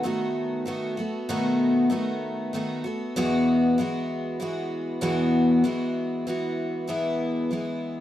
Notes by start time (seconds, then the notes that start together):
0.03 D#3 A3 B3 F#4
0.66 D#3 A3 B3 F#4
0.97 A3 B3 F#4
1.29 B2 D#3 A3 B3 F#4
1.90 D#3 A3 B3 F#4
2.53 D#3 A3 B3 F#4
2.84 A3 B3 F#4
3.16 E2 B2 E3 G#3 B3 F#4
3.78 E3 G#3 B3 F#4
4.40 E3 G#3 B3 F#4
5.01 E2 B2 E3 G#3 B3 F#4
5.64 E3 G#3 B3 F#4
6.27 E3 G#3 B3 F#4
6.88 E2 B2 E3 G#3 B3 E4
7.51 E3 G#3 B3 E4